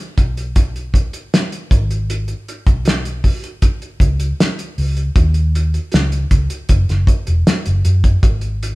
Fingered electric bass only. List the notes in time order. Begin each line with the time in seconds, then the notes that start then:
0.18 B1
1.72 G#1
2.67 B1
4.01 C#2
4.78 C#2
5.16 D#2
5.94 C#2
6.32 C#2
6.70 F#1
6.89 F#1
7.28 E1
7.67 F#1
7.85 F#2
8.23 G#1